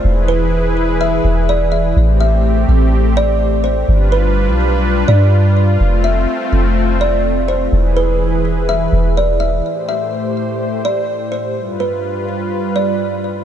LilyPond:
<<
  \new Staff \with { instrumentName = "Kalimba" } { \time 4/4 \key a \minor \tempo 4 = 125 r8 b'8 r4 e''4 d''8 e''8 | r8 e''8 r4. d''4 c''8 | r8 b'8 r4. d''4. | r8 e''8 r4. d''4 c''8 |
r8 b'8 r4 e''4 d''8 e''8 | r8 e''8 r4. d''4 c''8 | r8 b'8 r4. d''4. | }
  \new Staff \with { instrumentName = "Analog synth pad" } { \time 4/4 \key a \minor <e e' gis' b'>1 | <a c' g'>1 | <g d' f' b'>1 | <a c'>1 |
<e e' gis' b'>1 | <a, a g' c''>1 | <g, g f' b'>1 | }
  \new Staff \with { instrumentName = "808-style bass" } { \clef bass \time 4/4 \key a \minor e,,2~ e,,8 e,,4. | a,,4. a,,2~ a,,8 | g,,4~ g,,16 b,,4~ b,,16 g,4. | f,,4 r8 f,,2~ f,,8 |
e,,2~ e,,8 e,,4. | r1 | r1 | }
>>